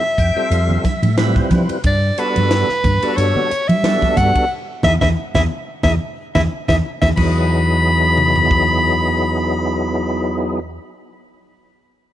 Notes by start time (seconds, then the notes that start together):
Already playing: E5
0.18 F2 G5, kick, hi-hat pedal, ride
0.35 G3 C4 F4 A4 E5, muted fretless electric bass stroke
0.50 F2 F5, hi-hat pedal, ride
0.69 low conga
0.84 E5, kick, snare, hi-hat pedal, ride, high conga
1.02 A2, ride, high conga
1.18 G3 C4 E4 F4 B4 E5, snare, hi-hat pedal, ride, high conga
1.36 C5, kick, snare, high conga
1.51 F3 B4, kick, snare, hi-hat pedal, ride, low conga
1.69 muted fretless electric bass stroke, ride
1.84 G2 D5, kick, hi-hat pedal, ride
2.18 G3 B3 D4 F#4 A4 B4, hi-hat pedal, ride
2.36 G2, ride, high conga
2.51 snare, hi-hat pedal, ride
2.69 muted fretless electric bass stroke, snare
2.84 G2, kick, hi-hat pedal, ride, low conga
3.02 G3 B3 D4 F#4 A4, muted fretless electric bass stroke, ride
3.17 G2 C#5, hi-hat pedal, ride
3.36 low conga
3.51 muted fretless electric bass stroke, hi-hat pedal, ride
3.68 G3 E5, ride, high conga
3.84 G3 B3 D4 F#4 A4, snare, hi-hat pedal, ride, high conga
4.02 kick, snare, high conga
4.17 G2 F#5, kick, hi-hat pedal, ride, low conga
4.36 muted fretless electric bass stroke, kick, ride
4.83 E2 D#4 E4 G#4 E5, kick, snare, low conga
5.01 E2 D#4 E4 G#4 E5, kick, snare, low conga
5.35 E2 D#4 E4 G#4 E5, kick, snare, low conga
5.83 E2 D#4 E4 G#4 E5, kick, snare, low conga
6.35 E2 D#4 E4 G#4 E5, kick, snare, low conga
6.68 E2 D#4 E4 G#4 E5, kick, snare, low conga
7.02 E2 D#4 E4 G#4 E5, kick, snare, low conga
7.17 E2 F#3 B3 D#4 E4 G#4 B5, kick, crash, high conga
8.18 mid tom
8.36 floor tom
8.51 kick